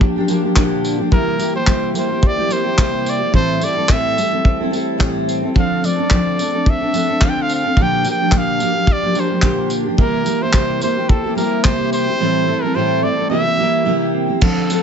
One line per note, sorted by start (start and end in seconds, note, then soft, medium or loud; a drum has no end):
0.00 0.18 F3 medium
0.00 1.12 F3 medium
0.00 0.17 A#3 medium
0.00 0.29 A#3 medium
0.00 0.16 D4 medium
0.00 0.84 D4 medium
0.00 0.56 F4 medium
0.00 0.15 G4 medium
0.00 kick loud
0.16 0.26 F3 medium
0.16 0.28 A#3 medium
0.16 0.28 D4 medium
0.16 0.29 G4 medium
0.28 0.43 F3 medium
0.28 0.44 A#3 medium
0.28 1.39 A#3 medium
0.28 0.43 D4 medium
0.28 0.41 G4 medium
0.28 tambourine medium
0.43 0.54 F3 soft
0.43 0.55 A#3 soft
0.43 0.55 D4 medium
0.43 0.55 G4 medium
0.55 0.99 A#2 medium
0.55 0.99 D3 medium
0.55 0.99 F3 medium
0.55 0.99 A#3 medium
0.55 0.98 D4 loud
0.55 0.97 G4 loud
0.55 2.78 G4 medium
0.55 kick loud
0.55 clap loud
0.85 1.18 D4 medium
0.85 tambourine medium
0.98 1.11 F3 soft
0.98 1.10 A#3 soft
0.98 1.11 D4 medium
0.98 1.11 G4 medium
1.11 1.39 C3 medium
1.11 3.33 E3 medium
1.11 1.37 G3 medium
1.11 1.38 A#3 medium
1.11 1.39 E4 medium
1.11 1.40 G4 medium
1.11 1.52 A#4 medium
1.11 kick loud
1.38 1.54 G3 medium
1.38 1.55 A#3 medium
1.38 1.94 A#3 medium
1.38 1.54 E4 medium
1.38 1.53 G4 medium
1.38 tambourine medium
1.54 1.66 A#3 soft
1.54 1.67 E4 medium
1.54 1.67 G4 medium
1.54 1.93 C5 loud
1.66 1.95 C3 medium
1.66 1.93 G3 medium
1.66 1.94 A#3 medium
1.66 2.23 C4 medium
1.66 1.95 E4 medium
1.66 1.96 G4 medium
1.66 kick loud
1.66 clap loud
1.94 2.10 G3 medium
1.94 2.49 A#3 medium
1.94 2.10 A#3 medium
1.94 2.10 E4 medium
1.94 2.08 G4 medium
1.94 tambourine medium
1.99 2.28 C5 medium
2.09 2.38 A#3 soft
2.09 2.37 E4 medium
2.09 2.35 G4 medium
2.23 3.06 C4 medium
2.23 kick loud
2.27 2.54 D5 loud
2.36 2.49 A#3 soft
2.36 2.49 E4 soft
2.36 2.50 G4 medium
2.48 2.65 G3 medium
2.48 2.65 A#3 medium
2.48 3.40 A#3 medium
2.48 2.65 E4 medium
2.48 2.63 G4 medium
2.48 tambourine medium
2.52 3.11 C5 loud
2.64 2.77 A#3 soft
2.64 2.78 E4 soft
2.64 2.77 G4 soft
2.78 3.21 C3 medium
2.78 3.21 G3 medium
2.78 3.21 A#3 loud
2.78 3.21 E4 medium
2.78 3.65 G4 medium
2.78 3.19 G4 medium
2.78 kick loud
2.78 clap loud
3.06 3.89 C4 medium
3.06 3.35 D5 loud
3.06 tambourine medium
3.20 3.33 A#3 soft
3.20 3.33 E4 soft
3.20 3.33 G4 medium
3.32 3.60 A2 medium
3.32 3.61 E3 medium
3.32 5.55 E3 medium
3.32 3.59 G3 medium
3.32 3.60 C4 medium
3.32 3.61 E4 medium
3.32 3.61 A4 medium
3.32 3.65 C5 loud
3.32 kick loud
3.60 3.76 G3 medium
3.60 4.17 A3 medium
3.60 3.76 C4 medium
3.60 3.75 E4 medium
3.60 3.74 A4 medium
3.60 tambourine medium
3.64 3.93 D5 loud
3.75 3.88 G3 soft
3.75 3.89 C4 soft
3.75 3.89 E4 medium
3.75 3.88 A4 medium
3.88 4.16 A2 medium
3.88 4.17 E3 medium
3.88 4.15 G3 medium
3.88 4.45 C4 medium
3.88 4.17 C4 medium
3.88 4.17 E4 medium
3.88 4.18 A4 medium
3.88 4.74 E5 loud
3.88 kick loud
3.88 clap loud
4.16 4.32 G3 medium
4.16 4.72 A3 medium
4.16 4.33 C4 medium
4.16 4.32 E4 medium
4.16 4.30 A4 medium
4.16 tambourine medium
4.31 4.61 G3 soft
4.31 4.61 C4 soft
4.31 4.60 E4 medium
4.31 4.59 A4 soft
4.45 5.28 C4 medium
4.45 kick loud
4.60 4.70 G3 soft
4.60 4.71 C4 medium
4.60 4.71 E4 medium
4.60 4.72 A4 medium
4.71 4.97 G3 medium
4.71 5.83 A3 medium
4.71 4.98 C4 medium
4.71 4.99 E4 medium
4.71 4.99 A4 medium
4.71 tambourine medium
4.98 5.42 A2 medium
4.98 5.42 E3 medium
4.98 5.42 G3 medium
4.98 5.43 C4 loud
4.98 5.41 E4 medium
4.98 5.62 G4 medium
4.98 5.41 A4 medium
4.98 kick loud
4.98 clap loud
5.28 6.11 C4 medium
5.28 tambourine medium
5.42 5.54 G3 soft
5.42 5.54 C4 soft
5.42 5.55 E4 soft
5.42 5.54 A4 soft
5.54 5.82 D3 medium
5.54 5.80 F3 medium
5.54 7.76 F3 medium
5.54 5.81 C4 medium
5.54 5.82 D4 medium
5.54 5.83 A4 medium
5.54 kick loud
5.59 5.87 F5 medium
5.82 5.98 F3 medium
5.82 6.38 A3 medium
5.82 5.98 C4 medium
5.82 5.97 D4 medium
5.82 5.95 A4 medium
5.82 6.71 D5 medium
5.82 tambourine medium
5.96 6.10 C4 soft
5.96 6.11 D4 medium
5.96 6.10 A4 medium
6.10 6.38 D3 medium
6.10 6.36 F3 medium
6.10 6.66 C4 medium
6.10 6.37 C4 medium
6.10 6.38 D4 medium
6.10 6.39 A4 medium
6.10 kick loud
6.10 clap medium
6.37 6.53 F3 medium
6.37 6.94 A3 medium
6.37 6.54 C4 medium
6.37 6.53 D4 medium
6.37 6.52 A4 medium
6.37 tambourine medium
6.53 6.82 C4 soft
6.53 6.81 D4 soft
6.53 6.80 A4 soft
6.66 7.49 C4 medium
6.66 7.26 E5 loud
6.66 kick loud
6.81 6.93 C4 soft
6.81 6.93 D4 medium
6.81 6.94 A4 medium
6.92 7.08 F3 medium
6.92 7.84 A3 medium
6.92 7.09 C4 medium
6.92 7.08 D4 medium
6.92 7.06 A4 medium
6.92 tambourine medium
7.07 7.21 C4 soft
7.07 7.22 D4 soft
7.07 7.21 A4 medium
7.21 7.64 D3 medium
7.21 7.65 F3 medium
7.21 7.65 C4 medium
7.21 7.64 D4 medium
7.21 9.44 F4 medium
7.21 7.62 A4 medium
7.21 7.31 F5 loud
7.21 kick loud
7.21 clap loud
7.29 7.43 G5 medium
7.42 7.52 F5 medium
7.49 7.83 C4 medium
7.49 tambourine medium
7.54 7.84 F5 loud
7.64 7.78 C4 soft
7.64 7.78 D4 soft
7.64 7.77 A4 soft
7.77 8.05 A#2 medium
7.77 8.05 D3 medium
7.77 9.98 F3 medium
7.77 8.03 F3 medium
7.77 8.04 A#3 medium
7.77 8.05 D4 medium
7.77 8.06 G4 medium
7.77 kick loud
7.82 8.07 G5 loud
8.04 8.20 F3 medium
8.04 8.60 A#3 medium
8.04 8.20 A#3 medium
8.04 8.20 D4 medium
8.04 8.19 G4 medium
8.04 tambourine medium
8.11 8.39 G5 loud
8.20 8.33 F3 soft
8.20 8.33 A#3 medium
8.20 8.32 D4 medium
8.20 8.33 G4 medium
8.32 8.60 A#2 medium
8.32 8.61 D3 medium
8.32 8.59 F3 medium
8.32 8.60 A#3 medium
8.32 8.87 D4 medium
8.32 8.61 D4 medium
8.32 8.61 G4 medium
8.32 kick loud
8.32 clap loud
8.37 8.94 F5 loud
8.60 8.75 F3 medium
8.60 9.15 A#3 medium
8.60 8.75 A#3 medium
8.60 8.74 D4 medium
8.60 8.72 G4 medium
8.60 tambourine medium
8.74 9.04 F3 soft
8.74 9.03 A#3 soft
8.74 9.03 D4 soft
8.74 9.01 G4 medium
8.87 9.69 D4 medium
8.87 kick loud
8.92 9.21 D5 loud
9.02 9.13 F3 soft
9.02 9.14 A#3 soft
9.02 9.14 D4 medium
9.02 9.15 G4 medium
9.14 9.30 F3 medium
9.14 9.31 A#3 medium
9.14 10.26 A#3 medium
9.14 9.30 D4 medium
9.14 9.29 G4 medium
9.14 tambourine medium
9.20 9.73 C5 medium
9.30 9.41 F3 soft
9.30 9.43 A#3 soft
9.30 9.42 D4 soft
9.30 9.43 G4 soft
9.42 9.86 A#2 medium
9.42 9.86 D3 medium
9.42 9.86 F3 medium
9.42 9.86 A#3 medium
9.42 9.85 D4 medium
9.42 9.84 G4 medium
9.42 11.65 G4 medium
9.42 kick loud
9.42 clap loud
9.70 10.05 D4 medium
9.70 tambourine medium
9.85 9.98 F3 soft
9.85 9.97 A#3 medium
9.85 9.98 D4 medium
9.85 9.98 G4 medium
9.97 10.26 C3 medium
9.97 12.20 E3 medium
9.97 10.23 G3 medium
9.97 10.24 A#3 medium
9.97 10.25 E4 medium
9.97 10.26 G4 medium
9.97 10.44 A#4 medium
9.97 kick loud
10.24 10.41 G3 medium
10.24 10.41 A#3 medium
10.24 10.81 A#3 medium
10.24 10.41 E4 medium
10.24 10.40 G4 medium
10.24 tambourine medium
10.41 10.52 A#3 medium
10.41 10.53 E4 medium
10.41 10.53 G4 medium
10.41 10.82 C5 medium
10.52 10.81 C3 medium
10.52 10.81 G3 medium
10.52 10.81 A#3 medium
10.52 11.09 C4 medium
10.52 10.82 E4 medium
10.52 10.82 G4 medium
10.52 kick loud
10.52 clap loud
10.81 10.97 G3 medium
10.81 11.37 A#3 medium
10.81 10.98 A#3 medium
10.81 10.97 E4 medium
10.81 10.96 G4 medium
10.81 11.11 C5 medium
10.81 tambourine medium
10.97 11.25 A#3 soft
10.97 11.25 E4 medium
10.97 11.23 G4 medium
11.09 11.93 C4 medium
11.09 11.36 A4 medium
11.09 kick loud
11.24 11.36 A#3 medium
11.24 11.36 E4 medium
11.24 11.37 G4 medium
11.35 11.63 G3 medium
11.35 11.63 A#3 medium
11.35 12.27 A#3 medium
11.35 11.64 E4 medium
11.35 11.64 G4 medium
11.35 11.65 A#4 medium
11.35 tambourine medium
11.64 12.07 C3 medium
11.64 12.08 G3 medium
11.64 12.08 A#3 medium
11.64 12.08 E4 medium
11.64 12.06 G4 medium
11.64 12.51 G4 medium
11.64 11.92 C5 loud
11.64 kick loud
11.64 clap loud
11.93 12.76 C4 medium
11.93 12.64 C5 loud
11.93 tambourine medium
12.07 12.21 A#3 soft
12.07 12.20 E4 soft
12.07 12.20 G4 medium
12.19 12.48 A2 medium
12.19 12.48 E3 medium
12.19 13.30 E3 medium
12.19 12.45 G3 medium
12.19 12.47 C4 medium
12.19 12.47 E4 medium
12.19 12.49 A4 medium
12.47 12.63 G3 medium
12.47 13.02 A3 medium
12.47 12.63 C4 medium
12.47 12.63 E4 medium
12.47 12.61 A4 medium
12.62 12.74 G3 soft
12.62 12.74 C4 soft
12.62 12.75 E4 medium
12.62 12.75 A4 medium
12.62 12.77 A#4 medium
12.74 13.03 A2 medium
12.74 13.03 E3 medium
12.74 13.01 G3 medium
12.74 13.01 C4 medium
12.74 13.62 C4 medium
12.74 13.02 E4 medium
12.74 13.04 A4 medium
12.74 13.05 C5 medium
13.02 13.18 G3 medium
13.02 13.37 A3 medium
13.02 13.17 C4 medium
13.02 13.16 E4 medium
13.02 13.15 A4 medium
13.02 13.30 D5 loud
13.16 13.28 G3 soft
13.16 13.30 C4 soft
13.16 13.30 E4 soft
13.16 13.30 A4 soft
13.29 13.46 C3 medium
13.29 14.41 E3 medium
13.29 13.46 G3 medium
13.29 13.45 A#3 medium
13.29 13.43 E4 medium
13.29 13.42 G4 medium
13.29 14.10 E5 loud
13.43 13.57 A#3 soft
13.43 13.58 E4 medium
13.43 13.58 G4 medium
13.57 13.84 G3 medium
13.57 13.85 A#3 medium
13.57 14.48 A#3 medium
13.57 13.85 E4 medium
13.57 13.86 G4 medium
13.85 14.29 C3 medium
13.85 14.29 G3 medium
13.85 14.28 A#3 medium
13.85 14.27 E4 medium
13.85 14.02 F4 medium
13.85 14.26 G4 medium
14.02 14.48 G4 soft
14.14 14.83 C4 medium
14.27 14.42 A#3 soft
14.27 14.41 E4 medium
14.27 14.41 G4 medium
14.41 14.69 D3 medium
14.41 14.68 F3 medium
14.41 14.83 F3 medium
14.41 14.69 C4 medium
14.41 14.69 D4 medium
14.41 14.70 A4 medium
14.41 14.83 A4 medium
14.41 kick loud
14.41 crash loud
14.69 14.83 F3 medium
14.69 14.83 A3 medium
14.69 14.83 C4 medium
14.69 14.83 D4 medium
14.69 14.83 A4 medium
14.69 tambourine medium